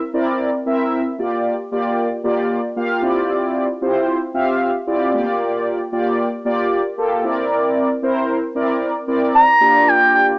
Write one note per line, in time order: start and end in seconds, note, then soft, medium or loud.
0.13 0.49 C4 medium
0.13 0.50 E4 medium
0.13 0.50 A#4 medium
0.13 0.50 D5 loud
0.66 1.02 C4 loud
0.66 1.02 E4 medium
0.66 1.02 A#4 medium
0.66 1.02 E5 loud
1.18 1.55 A#3 medium
1.18 1.55 F4 medium
1.18 1.55 G4 medium
1.18 1.55 D5 medium
1.71 2.07 A#3 medium
1.71 2.08 F4 medium
1.71 2.08 G4 medium
1.71 2.08 D5 loud
2.23 2.60 A#3 loud
2.23 2.60 F4 medium
2.23 2.60 G4 medium
2.23 2.60 D5 loud
2.76 3.03 A#3 loud
2.76 3.01 F4 medium
2.76 3.01 G4 medium
2.76 3.03 F5 loud
3.02 3.67 C4 loud
3.02 3.67 E4 medium
3.02 3.67 F4 medium
3.02 3.67 G4 medium
3.02 3.67 D5 loud
3.81 4.18 C4 medium
3.81 4.18 E4 medium
3.81 4.18 F4 medium
3.81 4.18 G4 medium
3.81 4.18 C5 loud
4.34 4.70 C4 loud
4.34 4.71 F4 medium
4.34 4.71 G4 medium
4.34 4.71 E5 medium
4.34 4.71 F5 loud
4.87 5.13 C4 medium
4.87 5.13 E4 medium
4.87 5.12 F4 medium
4.87 5.13 G4 medium
4.87 5.13 D5 loud
5.13 5.20 A3 medium
5.13 5.78 F4 medium
5.13 5.78 G4 medium
5.13 5.78 D5 loud
5.20 5.81 A#3 loud
5.92 6.28 A#3 medium
5.92 6.28 F4 medium
5.92 6.29 G4 medium
5.92 6.29 D5 loud
6.45 6.81 A#3 loud
6.45 6.81 F4 medium
6.45 6.81 G4 medium
6.45 6.81 D5 loud
6.97 7.24 A#3 medium
6.97 7.24 F4 medium
6.97 7.24 G4 medium
6.97 7.24 A4 loud
7.24 7.88 C4 loud
7.24 7.88 E4 medium
7.24 7.88 A#4 medium
7.24 7.89 D5 loud
8.02 8.39 C4 medium
8.02 8.39 E4 medium
8.02 8.39 A#4 medium
8.02 8.39 C5 loud
8.55 8.91 C4 loud
8.55 8.92 E4 medium
8.55 8.92 A#4 medium
8.55 8.92 D5 loud
9.07 9.44 C4 loud
9.07 9.44 E4 medium
9.07 9.44 A#4 medium
9.07 9.44 D5 loud
9.35 9.89 A#5 loud
9.60 10.32 A#3 medium
9.60 10.32 D4 medium
9.60 10.32 F4 medium
9.60 10.32 G4 medium
9.60 10.32 D5 medium
9.88 10.14 G5 loud
10.15 10.26 G5 loud